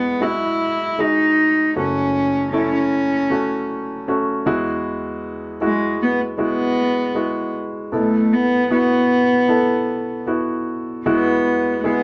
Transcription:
0.00 1.73 E2 soft
0.00 1.72 E3 soft
0.00 0.21 G#3 medium
0.00 0.24 B3 medium
0.00 0.21 E4 medium
0.00 0.22 F#4 medium
0.00 0.18 G#4 medium
0.21 0.95 G#3 medium
0.21 0.95 E4 medium
0.21 1.02 E4 medium
0.21 0.95 F#4 medium
0.99 1.72 G#3 medium
0.99 1.77 D#4 medium
0.99 1.73 F#4 soft
0.99 1.73 G#4 soft
1.76 4.42 F#1 soft
1.76 4.42 F#2 soft
1.76 2.50 A3 medium
1.76 2.50 C#4 soft
1.76 2.50 C#4 medium
1.76 2.50 F#4 medium
2.53 3.26 A3 medium
2.53 3.27 C#4 medium
2.53 4.04 C#4 medium
2.53 3.27 E4 medium
3.30 4.03 A3 medium
3.30 4.04 C#4 medium
3.30 4.04 F#4 medium
4.08 4.46 A3 medium
4.08 4.46 C#4 medium
4.08 4.45 F#4 medium
4.46 7.50 E2 medium
4.46 7.50 E3 medium
4.46 5.55 G#3 medium
4.46 5.56 E4 medium
4.46 5.56 F#4 medium
5.61 6.34 G#3 medium
5.61 5.98 G#3 medium
5.61 6.34 E4 medium
5.61 6.35 F#4 medium
6.02 6.19 B3 medium
6.38 7.11 G#3 medium
6.38 7.51 B3 medium
6.38 7.11 E4 medium
6.38 7.12 F#4 medium
7.15 7.88 G#3 medium
7.15 7.89 E4 soft
7.15 7.89 F#4 medium
7.92 11.02 B1 soft
7.92 11.02 B2 soft
7.92 8.35 A3 medium
7.92 8.66 B3 medium
7.92 8.66 E4 soft
7.92 8.66 A4 medium
8.33 8.71 B3 medium
8.70 9.44 B3 medium
8.70 10.24 B3 medium
8.70 9.44 E4 medium
8.70 9.45 F#4 medium
9.48 10.23 B3 medium
9.48 10.23 E4 soft
9.48 10.24 A4 medium
10.27 11.02 B3 medium
10.27 11.02 E4 medium
10.27 11.02 F#4 medium
11.06 12.03 E2 soft
11.06 12.03 E3 medium
11.06 11.80 G#3 medium
11.06 11.80 B3 medium
11.06 11.80 E4 medium
11.06 11.80 F#4 medium
11.84 12.03 G#3 medium
11.84 12.03 B3 medium
11.84 12.03 E4 medium
11.84 12.03 G#4 medium

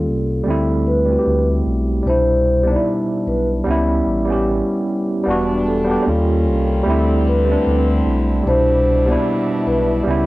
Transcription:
0.00 0.37 G3 medium
0.00 0.38 A#3 medium
0.00 0.39 C#4 medium
0.00 0.40 F4 medium
0.00 0.87 A4 medium
0.06 0.41 C2 medium
0.44 1.16 D2 medium
0.44 1.00 G3 medium
0.44 1.01 A3 medium
0.48 1.02 C4 medium
0.48 1.03 E4 medium
0.87 1.45 B4 medium
1.05 1.95 G3 medium
1.05 1.96 A3 medium
1.10 1.97 C4 medium
1.10 1.16 F#4 soft
1.19 2.01 G4 medium
1.27 1.61 D2 medium
1.66 2.01 B1 loud
2.03 2.76 C2 loud
2.03 2.60 B2 medium
2.03 2.59 G3 medium
2.07 2.61 D4 medium
2.07 2.63 E4 medium
2.07 2.65 C5 medium
2.63 3.63 G3 medium
2.63 3.64 B3 medium
2.67 3.66 D4 medium
2.67 2.75 D#4 medium
2.67 2.85 D5 medium
2.76 3.69 E4 medium
3.27 3.61 B1 medium
3.27 3.47 B4 medium
3.64 4.01 C#2 loud
3.64 4.20 G3 medium
3.64 4.21 B3 medium
3.68 4.22 C#4 medium
3.68 4.23 E4 loud
4.07 4.61 A1 medium
4.25 5.15 G3 medium
4.25 5.16 B3 medium
4.30 5.17 C#4 medium
4.30 5.18 G4 medium
5.24 5.97 E1 loud
5.24 6.05 E3 medium
5.24 5.80 G3 medium
5.24 8.43 G3 medium
5.24 5.81 B3 medium
5.24 6.05 D4 medium
5.28 5.82 D4 medium
5.28 5.83 F#4 medium
5.67 7.23 A4 medium
5.84 6.01 G3 medium
5.84 6.05 B3 medium
5.89 6.07 D4 medium
5.89 6.08 G4 medium
6.02 6.76 G3 medium
6.02 6.78 A#3 medium
6.02 6.85 C#4 medium
6.06 6.48 D#2 loud
6.06 6.86 D#3 medium
6.06 6.79 C#4 medium
6.06 6.85 F4 medium
6.06 6.80 F4 medium
6.47 6.81 C2 medium
6.83 7.56 D2 loud
6.83 8.44 D3 medium
6.83 7.39 G3 medium
6.83 7.41 A3 medium
6.83 8.44 C4 medium
6.83 10.26 E4 medium
6.88 7.42 C4 medium
6.88 7.43 E4 medium
7.28 7.85 B4 medium
7.45 8.35 G3 medium
7.45 8.36 A3 medium
7.50 8.37 C4 medium
7.50 8.38 D4 medium
7.67 8.01 D2 loud
8.06 8.41 B1 loud
8.43 9.16 C2 loud
8.43 10.04 B2 medium
8.43 9.01 B2 medium
8.43 8.99 G3 medium
8.43 10.04 D4 medium
8.47 9.02 D4 medium
8.47 9.03 E4 medium
8.47 9.05 C5 medium
9.06 10.03 G3 medium
9.06 10.05 B3 medium
9.06 9.25 D5 medium
9.10 10.07 D4 medium
9.10 10.08 E4 medium
9.67 10.01 B1 medium
9.67 9.87 B4 medium
10.04 10.26 C#2 loud
10.04 10.26 C#3 medium
10.04 10.26 G3 medium
10.04 10.26 B3 medium
10.08 10.26 C#4 medium
10.08 10.26 E4 medium

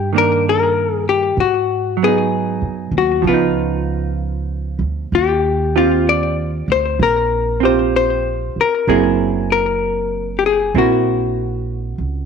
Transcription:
0.00 1.34 G2 medium
0.00 0.13 A#3 soft
0.13 1.38 D#3 soft
0.13 1.39 A#3 soft
0.13 1.39 D4 soft
0.18 0.45 A#4 medium
0.49 0.94 A#4 medium
0.94 1.05 G#4 medium
1.09 1.37 G4 medium
1.37 2.58 G#2 medium
1.37 1.97 F#4 medium
1.97 3.22 F#3 soft
2.03 3.27 B3 soft
2.03 2.97 G#4 medium
2.08 3.29 D#4 soft
2.61 2.91 F#2 soft
2.91 3.21 D#2 medium
2.98 3.25 F#4 medium
3.22 4.76 C#2 medium
3.22 5.11 F3 soft
3.27 5.14 B3 soft
3.27 4.78 F4 soft
3.33 5.16 D#4 soft
4.79 5.09 D2 medium
5.12 6.64 D#2 medium
5.12 5.77 G4 medium
5.76 7.59 C4 soft
5.76 7.62 F4 soft
5.76 6.08 F4 medium
5.76 7.62 G4 soft
6.09 6.65 D5 medium
6.68 6.97 D2 medium
6.68 6.99 C5 medium
6.99 8.51 A#1 medium
6.99 7.65 A#4 medium
7.60 8.86 C4 soft
7.60 8.87 F4 soft
7.60 8.87 G4 soft
7.65 7.95 C5 medium
7.96 8.58 C5 medium
8.56 muted upright bass stroke soft
8.61 8.87 A#4 medium
8.87 10.70 F#1 medium
8.87 12.26 F#3 soft
8.87 10.74 C4 soft
8.87 10.75 E4 soft
8.87 9.52 G#4 medium
8.87 10.76 A#4 soft
9.52 10.37 A#4 medium
10.39 10.45 G4 soft
10.46 10.76 G#4 medium
10.74 11.94 A#1 medium
10.74 12.26 C4 soft
10.74 12.26 E4 soft
10.74 12.26 F#4 medium
10.74 12.26 A#4 soft
11.98 12.26 C#2 soft

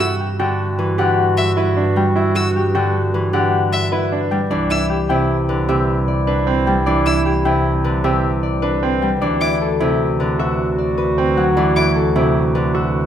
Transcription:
0.00 4.39 G2 medium
0.00 1.95 G3 medium
0.00 4.27 F#4 medium
0.00 0.26 F#4 medium
0.00 0.19 G4 medium
0.00 2.92 D5 medium
0.00 1.37 E5 medium
0.00 0.38 G5 medium
0.00 0.15 E6 medium
0.20 2.55 G4 medium
0.39 0.97 D3 medium
0.39 0.65 F#4 medium
0.39 1.95 G5 medium
0.79 3.13 E3 medium
0.79 1.56 B4 medium
0.98 2.74 D3 medium
0.98 1.24 G4 medium
0.98 3.32 F#5 medium
1.37 1.52 E5 medium
1.37 2.15 E5 medium
1.57 1.82 E4 medium
1.57 3.13 B4 medium
1.77 2.02 D4 medium
1.96 4.30 G3 medium
1.96 2.74 G5 medium
2.16 2.41 E4 medium
2.16 3.71 E5 medium
2.35 2.61 F#4 medium
2.35 2.50 E6 medium
2.56 4.89 G4 medium
2.75 3.32 D3 medium
2.75 3.00 F#4 medium
2.75 4.30 G5 medium
3.14 4.50 E3 medium
3.14 3.91 B4 medium
3.33 4.52 D3 medium
3.33 3.59 G4 medium
3.33 4.53 F#5 medium
3.72 5.67 E5 medium
3.72 3.87 E5 medium
3.92 4.18 E4 medium
3.92 5.48 B4 medium
4.12 4.37 D4 medium
4.31 6.66 G3 medium
4.31 5.08 G5 medium
4.50 9.10 C2 medium
4.50 6.86 E3 medium
4.50 4.76 D4 medium
4.50 8.98 E4 medium
4.50 6.07 D5 medium
4.70 4.96 E4 medium
4.70 4.85 E6 medium
4.90 7.24 G4 medium
5.09 5.67 C3 medium
5.09 5.35 E4 medium
5.09 6.65 G5 medium
5.49 7.83 D3 medium
5.49 6.26 B4 medium
5.68 7.44 C3 medium
5.68 5.94 G4 medium
5.68 8.03 E5 medium
6.08 6.85 D5 medium
6.27 6.53 D4 medium
6.27 7.83 B4 medium
6.47 6.72 C4 medium
6.67 9.01 G3 medium
6.67 7.44 G5 medium
6.86 9.20 E3 medium
6.86 7.12 D4 medium
6.86 8.42 D5 medium
7.06 7.31 E4 medium
7.06 7.21 E6 medium
7.25 9.23 G4 medium
7.45 8.03 C3 medium
7.45 7.71 E4 medium
7.45 9.01 G5 medium
7.84 9.23 D3 medium
7.84 8.61 B4 medium
8.04 9.23 C3 medium
8.04 8.29 G4 medium
8.04 10.38 E5 medium
8.43 9.20 D5 medium
8.62 8.88 D4 medium
8.62 10.19 B4 medium
8.83 9.08 C4 medium
9.02 9.23 G3 medium
9.02 9.23 G5 medium
9.21 13.06 D2 medium
9.21 11.56 E3 medium
9.21 9.47 D4 medium
9.21 13.06 F#4 medium
9.21 10.77 D5 medium
9.41 9.67 E4 medium
9.41 9.56 D6 medium
9.61 11.94 A4 medium
9.80 12.14 C3 medium
9.80 10.06 E4 medium
10.20 12.54 D3 medium
10.20 10.96 B4 medium
10.39 10.65 F#4 medium
10.39 12.73 E5 medium
10.78 11.56 D5 medium
10.98 12.54 B4 medium
11.18 11.43 C4 medium
11.37 13.06 F#3 medium
11.37 13.06 F#5 medium
11.57 13.06 E3 medium
11.57 11.82 D4 medium
11.57 13.06 D5 medium
11.76 12.02 E4 medium
11.76 11.91 D6 medium
11.96 13.06 A4 medium
12.16 13.06 C3 medium
12.16 12.41 E4 medium
12.55 13.06 D3 medium
12.55 13.06 B4 medium
12.74 13.00 F#4 medium
12.74 13.06 E5 medium

